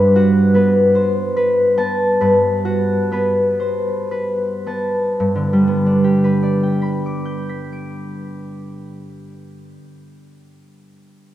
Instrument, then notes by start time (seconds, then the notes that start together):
harp
Already playing: G2 D4 B4 B5
0.16 F#4
0.54 B3 B4
0.95 C5
1.37 B4
1.77 B3 A5
2.21 G2 B4
2.65 F#4
3.12 B3 B4
3.60 C5
4.11 B4
4.67 B3 A5
5.20 G2
5.35 D3
5.53 G3
5.67 B3
5.86 D4
6.04 G4
6.24 B4
6.43 D5
6.63 G5
6.82 B5
7.06 D6
7.25 G6
7.49 B6
7.72 D7